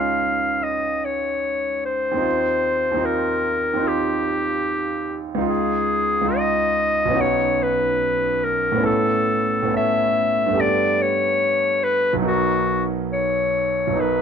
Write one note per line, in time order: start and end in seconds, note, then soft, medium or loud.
0.00 2.27 C#2 soft
0.00 2.27 C#4 soft
0.00 2.17 D#4 soft
0.00 2.20 F4 soft
0.00 2.28 G#4 soft
0.00 0.65 F5 medium
0.63 1.07 D#5 medium
1.05 1.85 C#5 medium
1.85 3.07 C5 medium
2.11 2.90 D#2 medium
2.11 2.93 C4 soft
2.17 2.96 D#4 soft
2.17 2.99 F4 soft
2.91 3.72 D#2 medium
2.91 3.74 C4 soft
2.97 3.77 D#4 soft
2.97 3.80 F4 soft
3.05 3.89 A#4 medium
3.73 5.38 D#2 soft
3.73 5.39 C4 soft
3.79 5.37 D#4 soft
3.79 5.40 F4 soft
3.88 5.23 G4 medium
5.35 6.20 C#2 medium
5.35 6.23 D#4 soft
5.41 6.26 F4 soft
5.49 6.39 G#4 medium
6.21 7.10 C#2 medium
6.21 7.11 D#4 soft
6.28 7.13 F4 soft
6.37 7.22 D#5 medium
7.05 8.75 B1 medium
7.05 8.73 B3 soft
7.11 8.76 C#4 soft
7.11 8.80 D#4 soft
7.16 8.81 F#4 soft
7.21 7.64 C#5 medium
7.63 8.45 B4 medium
8.44 8.85 A#4 medium
8.72 9.61 A2 medium
8.72 9.63 B3 medium
8.78 9.67 C#4 soft
8.78 9.70 E4 soft
8.83 9.73 A4 soft
8.83 9.75 A4 medium
9.62 10.51 A2 medium
9.62 10.51 B3 soft
9.68 10.54 C#4 soft
9.68 10.55 E4 soft
9.74 10.56 A4 soft
9.74 10.62 E5 medium
10.46 12.17 G2 medium
10.46 12.18 A3 soft
10.52 12.18 B3 soft
10.52 12.21 G4 soft
10.57 12.22 A4 soft
10.57 11.03 D5 medium
11.02 11.85 C#5 medium
11.84 12.14 B4 medium
12.13 13.86 B1 medium
12.13 13.89 F#3 soft
12.19 13.91 B3 soft
12.19 13.93 D#4 soft
12.25 12.84 F#4 medium
12.25 13.95 A#4 soft
13.13 14.02 C#5 medium
13.87 14.22 B1 soft
13.87 14.22 F#3 soft
13.93 14.22 B3 soft
13.93 14.22 D#4 soft
13.99 14.22 A#4 soft
13.99 14.22 B4 medium